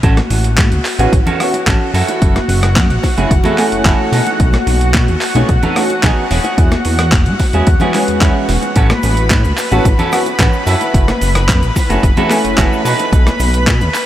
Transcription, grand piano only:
0.99 B3 C#4 E4 F#4
1.40 B3 C#4 E4 F#4
3.17 A3 C#4 E4 G#4
3.45 A3 C#4 E4 G#4
3.58 A3 C#4 E4 G#5
5.35 A3 C#4 D#4 F#4
5.76 A3 C#4 D#4 F#4
7.53 G#3 B3 C#4 F#4
7.81 G#3 B3 C#4 F#4
7.94 G#3 B3 C#4 G#4
9.71 B3 C#4 E4 F#4
10.12 B3 C#4 E4 F#4
11.90 A3 C#4 E4 G#4
12.17 A3 C#4 E4 G#4
12.30 A3 C#4 E4 G#5

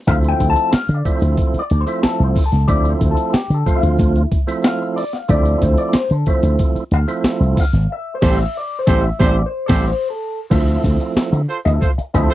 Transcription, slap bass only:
0.08 D2
0.40 D2
0.73 muted slap bass stroke
0.89 D3
1.22 D2
1.54 muted slap bass stroke
1.71 D2
2.04 muted slap bass stroke
2.20 C2
2.53 C#2
2.68 D2
3.01 D2
3.34 muted slap bass stroke
3.50 D3
3.83 D2
3.99 D2
5.29 D2
5.62 D2
5.95 muted slap bass stroke
6.11 D3
6.43 D2
6.76 muted slap bass stroke
6.92 D2
7.24 muted slap bass stroke
7.40 C2
7.73 G#1
8.22 A1
8.87 A1
9.20 A1
9.70 A1
10.51 D2
10.84 D2
11.16 muted slap bass stroke
11.33 D3
11.66 D2
11.98 muted slap bass stroke
12.14 D2

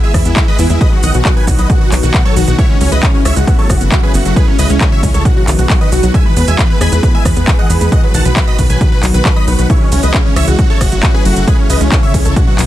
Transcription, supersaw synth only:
0.03 G#4 E5
0.15 E4
0.26 E4
0.37 E4
0.48 B4 D#5
0.59 E4
0.70 E4
0.81 B4 D#5
0.93 F#4
1.03 D#5 F#5
1.14 F#4
1.26 F#4
1.37 B4 G#5
1.48 F#4
1.59 B4 D#5
1.70 F#4
1.81 F#4
2.03 F#4
2.14 F#4
2.25 A4 C#5
2.36 F#4
2.47 F#4
2.58 E4 C#5
2.69 C#4
2.81 C#4
2.92 B4 D#5
3.03 C#4
3.14 C#4
3.25 C#5 E5
3.36 F#4
3.47 F#4
3.59 A4 C#5
3.70 F#4
3.81 F#4
3.92 F#4
4.03 G#4 B4
4.15 F#4
4.26 F#4
4.37 G#4 B4
4.48 C#4
4.59 B4 D#5
4.70 C#4
4.81 C#4
4.92 C#5 E5
5.03 C#4
5.14 A4 C#5
5.26 F#4
5.37 F#4
5.59 F#4
5.70 F#4
5.81 B4 D#5
5.92 F#4
6.03 F#4
6.14 E5 G#5
6.26 B4
6.37 B4
6.48 E5 G#5
6.59 B4
6.70 B4
6.81 G#5 B5
6.93 B4
7.04 B4
7.14 E5 G#5
7.26 B4
7.37 B4
7.48 B4
7.59 D#5 F#5
7.70 B4
7.81 B4
7.92 D#5 F#5
8.04 B4
8.14 F#5 A5
8.25 B4
8.37 B4
8.47 D#5 B5
8.59 B4
8.70 B4 G#5
8.81 B4
8.92 B4
9.14 B4
9.25 B4
9.36 D#5 B5
9.48 B4
9.59 B4
9.70 E4 C#5
9.81 C#4
9.92 C#4
10.03 B4 D#5
10.14 C#4
10.25 C#4
10.36 C#5 E5
10.48 F#4
10.59 F#4
10.70 A4 C#5
10.81 F#4
10.92 F#4
11.03 F#4
11.14 G#4 B4
11.26 F#4
11.37 F#4
11.48 G#4 B4
11.59 C#4
11.70 B4 D#5
11.81 C#4
11.92 C#4
12.03 C#5 E5
12.14 C#4
12.25 A4 C#5
12.36 F#4
12.47 F#4

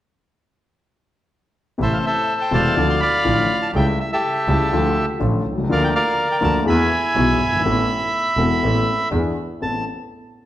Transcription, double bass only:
1.80 A1
2.52 E1
2.77 D2
3.26 A1
3.74 C#2
4.48 C#2
4.72 D2
5.21 A1
5.46 C2
5.70 D2
6.42 D2
6.67 E2
7.15 B1
7.39 G1
7.63 A1
8.37 E1
8.63 A1
9.12 E2
9.60 A1

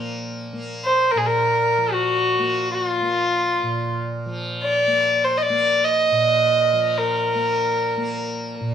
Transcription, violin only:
0.85 C5
1.11 A#4
1.17 G#4
1.26 A#4
1.92 F#4
2.74 F#4
2.85 F4
4.63 D5
5.24 C5
5.38 D#5
5.42 D5
5.84 D#5
6.98 A#4

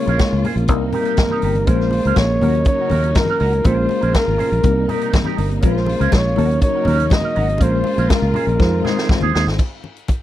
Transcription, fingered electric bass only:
0.08 A#1
0.33 C#2
0.56 A#1
0.69 C2
1.43 G1
1.68 A#1
2.05 C#2
2.17 A#1
2.42 D#2
2.92 D#2
3.41 C#2
3.65 A#1
4.03 A#1
4.28 G#1
4.52 A#1
4.64 C2
5.38 G1
5.63 A#1
6.01 C#2
6.12 A#1
6.38 D#2
6.87 D#2
7.37 G#1
7.61 A#1
7.98 A#1
8.22 C#2
8.47 A#1
8.60 F2
9.23 D#2
9.35 D#2
9.47 G#1

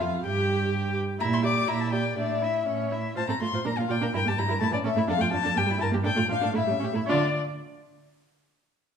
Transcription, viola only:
0.01 F4
0.25 G4
1.20 E4
1.43 G4
1.68 E4
1.92 G4
2.18 D4
2.42 E4
2.67 C#4
2.92 E4
3.15 F4
3.28 C4
3.41 A3
3.53 F4
3.65 D4
3.77 A#3
3.88 F4
4.01 D4
4.14 E4
4.25 A#3
4.38 G3
4.49 E4
4.61 A3
4.71 E3
4.84 C#4
4.96 A3
5.07 D4
5.18 A3
5.31 F3
5.43 D4
5.54 A#3
5.66 G3
5.78 E4
5.91 A#3
6.03 D4
6.16 A3
6.29 F3
6.41 D4
6.53 A3
6.67 G3
6.79 C#4
6.93 A3
7.06 D4

